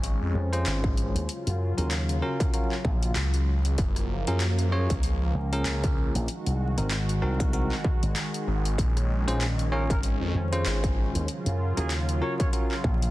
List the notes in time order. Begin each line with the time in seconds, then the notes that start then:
Already playing: G#1 G#3 C#4
0.03 closed hi-hat
0.22 F2
0.35 F2
0.53 C#4 F4 G#4 C5, closed hi-hat
0.66 G#1, clap, closed hi-hat
0.84 kick
0.97 closed hi-hat
1.15 D#2, closed hi-hat
1.28 C#3 F#3 F4, closed hi-hat
1.47 F#2, closed hi-hat
1.78 D#2 C#4 F4 F#4 A#4, closed hi-hat
1.91 clap, closed hi-hat
2.09 closed hi-hat
2.22 C#4 F4 F#4 A#4
2.40 kick, closed hi-hat
2.54 C#4 F4 F#4 A#4, closed hi-hat
2.72 clap
2.85 A#1, kick
3.03 closed hi-hat
3.16 C#2, cross-stick, clap, closed hi-hat
3.34 closed hi-hat
3.65 closed hi-hat
3.78 F#1 F3 A#3, kick, closed hi-hat
3.96 cross-stick, closed hi-hat
4.27 F#2 C#4 F4 G#4 A#4, closed hi-hat
4.40 clap, closed hi-hat
4.59 closed hi-hat
4.72 C#4 F4 G#4 C#5
4.90 C#2, kick, closed hi-hat
5.03 closed hi-hat
5.21 C#2
5.34 C#2
5.53 C#4 F4 G#4 A#4, closed hi-hat
5.65 C#2, clap, closed hi-hat
5.84 kick, closed hi-hat
6.15 A#1, closed hi-hat
6.28 D#3 G#3 F#4, closed hi-hat
6.46 C2, closed hi-hat
6.77 G#1 C4 D#4 F#4 A#4, closed hi-hat
6.91 clap, closed hi-hat
7.09 closed hi-hat
7.22 C2 C4 D#4 F#4 A#4
7.40 kick, closed hi-hat
7.53 C4 D#4 F#4 A#4, closed hi-hat
7.72 clap
7.84 kick
8.03 G#1, closed hi-hat
8.16 cross-stick, clap, closed hi-hat
8.34 closed hi-hat
8.47 G#1
8.65 closed hi-hat
8.78 A#1 C#4, kick, closed hi-hat
8.97 cross-stick, closed hi-hat
9.28 A#1 C#4 F4 G#4 C5, closed hi-hat
9.41 clap, closed hi-hat
9.59 closed hi-hat
9.72 C#4 F4 G#4 A#4 C#5
9.90 G#1 A#4, kick, closed hi-hat
10.03 closed hi-hat
10.21 F2
10.35 F2
10.52 C#4 F4 G#4 C5, closed hi-hat
10.65 G#1, clap, closed hi-hat
10.84 kick, closed hi-hat
11.15 D#2, closed hi-hat
11.28 C#3 F#3 F4, closed hi-hat
11.46 F#2, closed hi-hat
11.77 D#2 C#4 F4 F#4 G#4 A#4, closed hi-hat
11.91 clap, closed hi-hat
12.09 closed hi-hat
12.22 C#4 F4 F#4 A#4 C#5
12.40 C#5, kick, closed hi-hat
12.53 C#4 F4 F#4 A#4, closed hi-hat
12.71 clap
12.84 A#1, kick
13.02 closed hi-hat